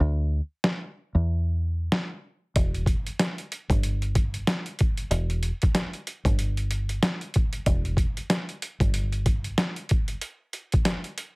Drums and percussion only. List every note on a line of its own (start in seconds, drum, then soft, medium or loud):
0.64 snare loud
1.92 snare loud
2.56 kick loud
2.56 closed hi-hat medium
2.74 closed hi-hat soft
2.86 kick medium
2.86 closed hi-hat medium
3.07 closed hi-hat medium
3.19 snare loud
3.19 closed hi-hat medium
3.38 closed hi-hat soft
3.52 closed hi-hat medium
3.70 kick medium
3.70 closed hi-hat medium
3.83 closed hi-hat medium
4.02 closed hi-hat soft
4.15 kick medium
4.15 closed hi-hat medium
4.34 closed hi-hat medium
4.47 snare loud
4.47 closed hi-hat medium
4.66 closed hi-hat soft
4.79 kick medium
4.79 closed hi-hat medium
4.97 closed hi-hat medium
5.11 closed hi-hat medium
5.30 closed hi-hat soft
5.43 closed hi-hat medium
5.62 kick medium
5.62 closed hi-hat medium
5.75 snare loud
5.75 closed hi-hat medium
5.93 closed hi-hat soft
6.07 closed hi-hat medium
6.25 kick medium
6.25 closed hi-hat medium
6.39 closed hi-hat medium
6.57 closed hi-hat soft
6.71 closed hi-hat medium
6.89 closed hi-hat medium
7.03 snare loud
7.03 closed hi-hat medium
7.21 closed hi-hat soft
7.34 kick medium
7.34 closed hi-hat medium
7.53 closed hi-hat medium
7.66 kick loud
7.66 closed hi-hat loud
7.85 closed hi-hat soft
7.97 kick medium
7.97 closed hi-hat medium
8.17 closed hi-hat medium
8.30 snare loud
8.30 closed hi-hat medium
8.49 closed hi-hat soft
8.62 closed hi-hat medium
8.80 kick medium
8.80 closed hi-hat medium
8.94 closed hi-hat medium
9.12 closed hi-hat soft
9.26 kick medium
9.26 closed hi-hat medium
9.44 closed hi-hat medium
9.58 snare loud
9.58 closed hi-hat medium
9.76 closed hi-hat soft
9.89 kick medium
9.89 closed hi-hat medium
10.08 closed hi-hat medium
10.21 closed hi-hat medium
10.53 closed hi-hat medium
10.72 kick medium
10.72 closed hi-hat medium
10.85 snare loud
10.85 closed hi-hat medium
11.04 closed hi-hat soft
11.18 closed hi-hat medium